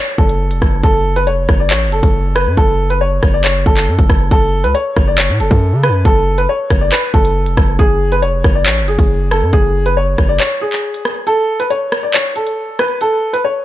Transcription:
Already playing: C#5
0.18 F#1 A4, kick
0.29 closed hi-hat
0.51 F1, closed hi-hat
0.62 F#1, kick, cross-stick
0.84 F#1 A4, kick, closed hi-hat
1.16 B4, closed hi-hat
1.27 F1 C#5, closed hi-hat
1.49 F#1, kick, cross-stick
1.60 D5
1.70 A1 C#5, clap
1.87 F#1
1.92 A4, closed hi-hat
2.03 F#1, kick, closed hi-hat
2.35 B4, cross-stick, closed hi-hat
2.47 F#2
2.57 F#1 A4, kick, closed hi-hat
2.90 B4, closed hi-hat
3.01 C#5
3.23 F#1, kick, cross-stick, closed hi-hat
3.34 D5
3.44 C#5, clap, closed hi-hat
3.66 F#1 A4, kick
3.77 clap, closed hi-hat
3.88 F#2
3.99 F#1, kick, closed hi-hat
4.10 F#1, kick, cross-stick
4.31 F#1 A4, kick, closed hi-hat
4.64 C#2 B4, closed hi-hat
4.74 C#5, closed hi-hat
4.97 F#1, kick, cross-stick
5.07 D5
5.18 C#5, clap
5.29 A2
5.40 F#1 A4, closed hi-hat
5.51 F#2, kick, closed hi-hat
5.73 C#3
5.83 B4, cross-stick, closed hi-hat
5.89 F#2
6.05 F#1 A4, kick, closed hi-hat
6.38 B4, closed hi-hat
6.49 C#5
6.70 F#1, kick, cross-stick, closed hi-hat
6.81 D5
6.92 B4, clap, closed hi-hat
7.13 F#1 A4, kick
7.25 closed hi-hat
7.46 F1, closed hi-hat
7.57 F#1, kick, cross-stick
7.79 F#1 G#4, kick, closed hi-hat
8.12 B4, closed hi-hat
8.22 F1 C#5, closed hi-hat
8.44 F#1, kick, cross-stick
8.55 D5
8.66 A1 C#5, clap
8.82 F#1
8.88 G#4, closed hi-hat
8.99 F#1, kick, closed hi-hat
9.31 A4, cross-stick, closed hi-hat
9.42 F#2
9.53 F#1 G#4, kick, closed hi-hat
9.86 B4, closed hi-hat
9.97 C#5
10.18 F#1, kick, cross-stick, closed hi-hat
10.29 D5
10.40 C#5, clap, closed hi-hat
10.61 G#4
10.73 clap, closed hi-hat
10.94 closed hi-hat
11.05 cross-stick
11.27 A4, closed hi-hat
11.60 B4, closed hi-hat
11.70 C#5, closed hi-hat
11.92 cross-stick
12.03 D5
12.14 C#5, clap
12.36 A4, closed hi-hat
12.47 closed hi-hat
12.79 B4, cross-stick, closed hi-hat
13.01 A4, closed hi-hat
13.33 B4, closed hi-hat
13.44 C#5

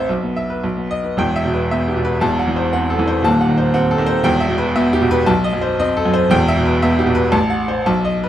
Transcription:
Already playing: A1 C4 C5 E5
0.09 B1
0.23 B3
0.36 E5
0.50 B4
0.63 B1
0.77 B3
0.91 D#5
1.04 B4
1.17 E1 E2 G5
1.36 E5
1.45 B2
1.53 B4
1.71 B3 E5
1.88 G4
1.97 B2
2.05 B4
2.21 E1 E2 A5
2.39 F#5
2.47 E3
2.56 C5
2.73 C4 F#5
2.90 A4
2.99 E3
3.07 C5
3.23 D#1 D#2 A5
3.41 F#5
3.49 D#3
3.58 C5
3.74 C4 F#5
3.91 A4
3.98 D#3
4.06 C5
4.23 E1 E2 G5
4.40 E5
4.48 B2
4.58 B4
4.76 B3 E5
4.93 G4
5.02 B2
5.11 B4
5.26 B1 A5
5.44 D#5
5.53 F#2
5.61 C5
5.79 C4 D#5
5.97 A4
6.05 F#2
6.14 C5
6.30 E1 E2 G5
6.48 E5
6.57 B2
6.65 B4
6.82 B3 E5
6.99 G4
7.06 B2
7.15 B4
7.32 A1 A5
7.50 F#5
7.68 C5
7.86 B1 A5
8.05 D#5
8.23 B4

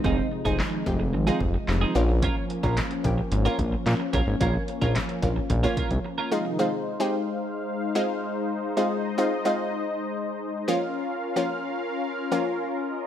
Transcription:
Already playing: C3 D#3 F3 G#3 D#4
0.04 F1 G#3 C4 D#4 F4 G#4, kick
0.18 muted clean electric guitar stroke
0.32 muted clean electric guitar stroke
0.45 F1 G#3 C4 D#4 G#4, kick
0.59 muted clean electric guitar stroke, snare, clap
0.72 muted clean electric guitar stroke
0.86 F1 G#3 D#4 G4, kick
1.00 muted clean electric guitar stroke
1.13 G#1, muted clean electric guitar stroke
1.27 G#3 C4 D#4 F4 G#4
1.41 F1, muted clean electric guitar stroke, kick
1.54 muted clean electric guitar stroke
1.68 F1, muted clean electric guitar stroke, snare, clap
1.81 C4 D#4 G#4
1.95 A#1 A#3 C#4 F4, muted clean electric guitar stroke
2.09 muted clean electric guitar stroke
2.23 C#4 F4 A#4, kick, closed hi-hat
2.36 muted clean electric guitar stroke
2.50 muted clean electric guitar stroke, closed hi-hat
2.63 A#1 A#3 C#4 F4 A#4, kick
2.77 muted clean electric guitar stroke, snare, clap, closed hi-hat
2.91 muted clean electric guitar stroke, closed hi-hat
3.04 A#1 A#3 C#4 G4, kick, closed hi-hat
3.18 muted clean electric guitar stroke
3.32 G#1, muted clean electric guitar stroke, closed hi-hat
3.45 A#3 C#4 F4 A#4
3.59 A#1, muted clean electric guitar stroke, kick, closed hi-hat
3.72 muted clean electric guitar stroke
3.86 A#2, snare, clap, closed hi-hat
4.00 muted clean electric guitar stroke
4.13 A#1 A#3 C#4 F4 A#4, kick, closed hi-hat
4.27 G#1, muted clean electric guitar stroke
4.40 A#1 A#3 C#4 F4 A#4, kick, closed hi-hat
4.55 muted clean electric guitar stroke
4.68 muted clean electric guitar stroke, closed hi-hat
4.81 A#1 A#3 C#4 F4 A#4, kick
4.95 muted clean electric guitar stroke, snare, clap, closed hi-hat
5.09 muted clean electric guitar stroke, closed hi-hat
5.22 A#1 A#3 C#4 F4, kick, closed hi-hat
5.36 muted clean electric guitar stroke
5.50 A#1, muted clean electric guitar stroke, kick, closed hi-hat
5.63 A#3 C#4 F4 A#4
5.77 C2 C#4 F4 A#4, kick, closed hi-hat
5.91 C2, muted clean electric guitar stroke, closed hi-hat
6.05 muted clean electric guitar stroke
6.18 C#4 F4 A#4
6.32 C3 D#3 G#3 D#4 F4, muted clean electric guitar stroke
6.45 muted clean electric guitar stroke
6.59 G#3 C4 D#4 F4 C5 F5
7.00 G#3 C4 D#4 G4
7.95 G#3 C4 D#4 F4
8.77 G#3 C4 D#4 F4 D#5
9.18 G#3 C4 D#4 F4
9.45 G#3 C4 D#4 F4
10.68 F3 A#3 C#4 F4 A#4 F5
11.36 F3 A#3 C#4 F4
12.32 F3 A#3 C#4 F4
12.86 D#5

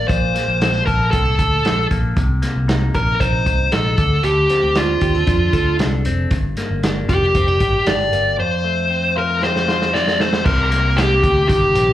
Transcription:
Already playing: A#3 D4 A#4
0.08 A#1 A#2 C5, kick, closed hi-hat
0.34 A#3, snare, closed hi-hat
0.48 A#1
0.60 C4, snare, closed hi-hat
0.73 D4
0.86 A#1 A4 A#4, kick, closed hi-hat
1.11 C2 C4 A4, kick, closed hi-hat
1.25 D4
1.39 D2 A4, kick, closed hi-hat
1.65 A#1 D4, snare, closed hi-hat
1.91 A#1 A#3, kick, closed hi-hat
2.17 C2 C3, kick, closed hi-hat
2.42 A#3, snare, closed hi-hat
2.56 C2
2.68 D#4, snare, closed hi-hat
2.94 A#1 A#4, kick, closed hi-hat
3.20 A#1 D#4 C5, kick, closed hi-hat
3.46 C2, kick, closed hi-hat
3.72 A#1 D#4 A4, snare, closed hi-hat
3.98 D2 D3, kick, closed hi-hat
4.24 D2 D3 G4, closed hi-hat
4.49 C4, snare, closed hi-hat
4.63 D2
4.75 D4 F4, snare, closed hi-hat
5.01 D#2 G4, kick, closed hi-hat
5.15 A4
5.27 F2 D4, kick, closed hi-hat
5.53 D2 A4, kick, closed hi-hat
5.79 C2 D4, snare, closed hi-hat
6.05 F1 C4, closed hi-hat
6.31 G1 G2, kick, closed hi-hat
6.57 A#3, snare, closed hi-hat
6.70 G1
6.83 D4, snare, closed hi-hat
7.09 F1 G4, kick, closed hi-hat
7.35 F1 C4, kick, closed hi-hat
7.48 D4
7.60 A1 G4, kick, closed hi-hat
7.86 G1 D4 D5, snare, closed hi-hat
8.12 G1 A#3, closed hi-hat
8.38 F2 C5
8.64 A3
8.90 C4
9.16 F4 A#4
9.42 C4 C5, snare
9.56 snare
9.68 F4, snare
9.82 snare
9.93 C4 D5, snare
10.08 snare
10.19 A3 C5, snare
10.33 snare
10.45 C2 C3 A#4, kick, crash
10.71 A#3, snare, closed hi-hat
10.97 C4 G4, snare, closed hi-hat
11.23 D2 G4, kick, closed hi-hat
11.49 G1 D#3 G4, kick, closed hi-hat
11.75 A#1 C4, closed hi-hat

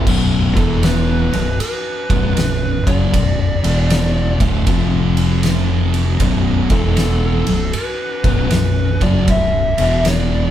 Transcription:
0.07 B0 B1 F#2 B2, kick, crash
0.56 E1 E2 B2 E3 A4, kick, ride
0.83 B4, snare, ride
1.33 B0 B1 F#2, ride
1.60 B4, ride
2.10 B0 B1 F#2 B2, kick, ride
2.37 B0 B1 F#2, snare, ride
2.87 F#1 F#2 C#3 F#3 D5, kick, ride
3.13 B0 B1 F#2, kick, ride
3.63 E1 E2 B2 E3, ride
3.90 snare, ride
4.40 D1 D2 A2 D3, kick, ride
4.67 F1 F2 C3 F3, kick, ride
5.17 ride
5.43 snare, ride
5.94 ride
6.20 B0 B1 F#2 B2, kick, ride
6.70 E1 E2 B2 E3 A4, kick, ride
6.97 snare, ride
7.47 B0 B1 F#2, ride
7.73 B4, ride
8.24 B0 B1 F#2 B2, kick, ride
8.51 B0 B1 F#2 B4, snare, ride
9.01 F#1 F#2 C#3 F#3 D5, kick, ride
9.28 B0 B1 F#2 E5, kick, ride
9.78 E1 E2 B2 E3, ride
10.05 D5, snare, ride

